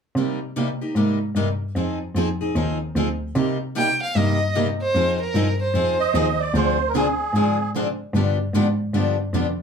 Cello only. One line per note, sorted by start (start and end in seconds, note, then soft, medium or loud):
0.15 0.80 C3 medium
0.95 1.30 G#2 medium
1.35 1.69 G2 medium
1.76 2.08 F2 medium
2.15 2.49 F2 medium
2.56 2.90 D#2 medium
2.95 3.30 D2 medium
3.36 4.00 C3 medium
4.15 4.79 G2 medium
4.95 5.27 F2 medium
5.34 5.69 G2 medium
5.74 6.08 F2 medium
6.14 6.49 D#2 medium
6.54 7.18 D2 medium
7.33 7.98 G#2 medium
8.13 8.46 G2 medium
8.54 8.88 G#2 medium
8.93 9.28 G2 medium
9.33 9.62 F2 medium